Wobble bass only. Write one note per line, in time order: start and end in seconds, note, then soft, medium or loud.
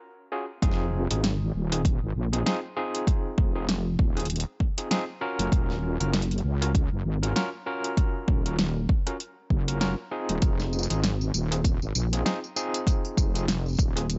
0.62 1.08 F1 medium
1.10 1.52 G#1 medium
1.54 2.00 D#1 medium
2.02 2.13 G#1 loud
2.15 2.44 A#1 medium
3.38 3.97 F1 medium
3.99 4.44 D#1 medium
5.39 5.50 F1 loud
5.52 5.98 D#1 loud
6.00 6.42 F#1 medium
6.44 6.89 C#2 medium
6.92 7.03 F#1 loud
7.05 7.34 G#1 loud
8.28 8.87 D#1 medium
9.50 9.96 F#1 medium
10.29 10.40 D#1 loud
10.42 10.87 F1 loud
10.90 11.32 G#1 medium
11.34 11.79 D#1 medium
11.82 11.93 G#1 loud
11.95 12.24 A#1 medium
13.17 13.77 F1 medium
13.79 14.18 D#1 medium